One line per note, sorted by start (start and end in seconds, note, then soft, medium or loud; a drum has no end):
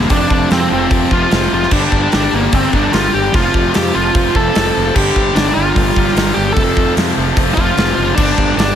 0.00 0.10 D3 medium
0.00 0.11 G3 loud
0.00 0.11 G3 medium
0.00 0.11 A#3 medium
0.00 snare soft
0.09 0.25 F1 loud
0.09 0.69 F2 medium
0.09 0.70 C3 loud
0.09 0.48 D4 loud
0.09 1.70 F4 medium
0.09 1.70 C5 medium
0.09 1.70 A5 medium
0.09 kick loud
0.09 open hi-hat medium
0.13 0.68 F3 loud
0.30 0.45 F1 medium
0.30 kick loud
0.51 0.65 F2 loud
0.51 0.70 C4 loud
0.51 snare loud
0.51 open hi-hat medium
0.69 0.86 F1 medium
0.69 1.29 F2 medium
0.69 1.31 C3 medium
0.69 1.30 F3 medium
0.69 1.10 C4 loud
0.90 1.05 F1 loud
0.90 1.70 F2 medium
0.90 1.71 C3 medium
0.90 1.71 F3 loud
0.90 kick loud
0.90 open hi-hat medium
1.10 1.25 F1 medium
1.10 1.31 C3 medium
1.10 1.30 F3 medium
1.10 1.53 F4 loud
1.10 kick medium
1.14 1.29 F2 medium
1.30 1.46 F1 loud
1.30 1.70 F2 medium
1.30 1.71 C3 medium
1.30 1.72 F3 medium
1.30 snare loud
1.30 open hi-hat medium
1.52 1.66 F1 loud
1.52 1.72 F4 medium
1.63 snare soft
1.71 1.86 G1 loud
1.71 2.31 G2 medium
1.71 2.32 D3 loud
1.71 2.30 G3 loud
1.71 2.12 D4 loud
1.71 3.33 G4 medium
1.71 3.32 D5 medium
1.71 3.32 A#5 medium
1.71 kick loud
1.71 crash loud
1.92 2.06 G1 medium
1.92 kick loud
2.12 2.27 G1 loud
2.12 2.34 D4 loud
2.12 snare loud
2.12 open hi-hat medium
2.32 2.47 G1 medium
2.32 2.93 D3 medium
2.32 2.91 G3 medium
2.32 2.54 A#3 medium
2.36 2.91 G2 medium
2.52 2.67 G1 loud
2.52 3.32 G2 medium
2.52 3.33 D3 medium
2.52 3.33 G3 loud
2.52 2.75 C4 loud
2.52 kick loud
2.52 open hi-hat medium
2.72 2.87 G1 medium
2.72 2.91 G2 medium
2.72 2.92 D3 medium
2.72 2.91 G3 loud
2.72 2.93 D4 loud
2.72 kick medium
2.92 3.08 G1 loud
2.92 3.32 G2 medium
2.92 3.33 D3 medium
2.92 3.33 G3 medium
2.92 3.14 F4 loud
2.92 snare loud
2.92 open hi-hat medium
3.14 3.28 G1 medium
3.14 3.34 G4 loud
3.33 3.48 F1 loud
3.33 3.92 F2 loud
3.33 3.93 C3 loud
3.33 3.92 F3 loud
3.33 4.94 F4 medium
3.33 3.76 F4 loud
3.33 4.94 C5 medium
3.33 4.93 A5 medium
3.33 kick loud
3.33 open hi-hat medium
3.54 3.68 F1 medium
3.54 kick medium
3.74 3.90 F2 loud
3.74 3.95 G4 loud
3.74 snare loud
3.74 open hi-hat medium
3.93 4.09 F1 loud
3.93 4.52 F2 medium
3.93 4.54 C3 medium
3.93 4.53 F3 medium
3.93 4.36 F4 loud
4.14 4.29 F1 loud
4.14 4.93 F2 medium
4.14 4.94 C3 medium
4.14 4.95 F3 medium
4.14 kick loud
4.14 open hi-hat medium
4.35 4.49 F1 medium
4.35 4.54 F2 medium
4.35 4.54 C3 medium
4.35 4.53 F3 medium
4.35 4.92 A4 loud
4.35 kick medium
4.54 4.70 F1 medium
4.54 4.93 F2 medium
4.54 4.94 C3 medium
4.54 snare loud
4.54 open hi-hat medium
4.58 4.95 F3 medium
4.77 4.90 F1 loud
4.95 5.10 G1 medium
4.95 5.54 G2 loud
4.95 5.55 D3 loud
4.95 5.54 G3 loud
4.95 5.33 G4 loud
4.95 6.55 G4 medium
4.95 6.55 D5 medium
4.95 6.55 A#5 medium
4.95 kick loud
4.95 crash loud
5.16 5.30 G1 medium
5.16 kick loud
5.35 5.50 G1 loud
5.35 5.54 D4 loud
5.35 snare loud
5.35 open hi-hat medium
5.54 5.70 G1 medium
5.54 6.15 D3 medium
5.54 6.14 G3 medium
5.54 6.38 F4 loud
5.59 6.14 G2 medium
5.75 5.91 G1 loud
5.75 6.55 G2 medium
5.75 6.55 D3 medium
5.75 6.56 G3 medium
5.75 kick loud
5.75 open hi-hat medium
5.95 6.10 G1 medium
5.95 6.16 D3 medium
5.95 6.14 G3 medium
5.95 kick medium
6.00 6.15 G2 medium
6.08 snare soft
6.15 6.30 G1 loud
6.15 6.54 G2 medium
6.15 6.55 D3 medium
6.15 6.56 G3 medium
6.15 snare loud
6.15 open hi-hat medium
6.34 6.51 G1 medium
6.34 6.53 G4 loud
6.53 6.71 F1 loud
6.53 7.15 F2 medium
6.53 8.16 F4 medium
6.53 6.92 A4 loud
6.53 8.16 C5 medium
6.53 8.15 A5 medium
6.53 kick loud
6.53 open hi-hat medium
6.58 7.16 C3 loud
6.58 7.14 F3 loud
6.77 6.91 F1 medium
6.77 kick medium
6.97 7.11 F2 loud
6.97 snare loud
6.97 open hi-hat medium
7.15 7.31 F1 medium
7.15 7.76 C3 medium
7.15 7.75 F3 loud
7.20 7.75 F2 medium
7.36 7.51 F1 loud
7.36 8.16 F2 medium
7.36 8.16 C3 medium
7.36 8.17 F3 medium
7.36 kick loud
7.36 open hi-hat medium
7.54 7.71 F1 medium
7.54 7.75 F3 medium
7.54 7.94 F4 loud
7.54 kick loud
7.58 7.74 F2 medium
7.58 7.77 C3 medium
7.76 7.91 F1 loud
7.76 8.16 F2 medium
7.76 8.17 C3 medium
7.76 8.18 F3 medium
7.76 snare loud
7.76 open hi-hat medium
7.95 8.12 F#1 medium
7.95 8.14 F4 loud
8.15 8.32 G1 loud
8.15 8.75 G2 medium
8.15 8.75 D3 loud
8.15 8.54 D4 loud
8.15 8.75 G4 medium
8.15 8.75 D5 medium
8.15 8.75 A#5 medium
8.15 kick loud
8.15 crash loud
8.20 8.75 G3 loud
8.38 8.52 G1 medium
8.38 kick medium
8.57 8.72 G1 loud
8.57 8.75 D4 loud
8.57 snare loud
8.57 open hi-hat medium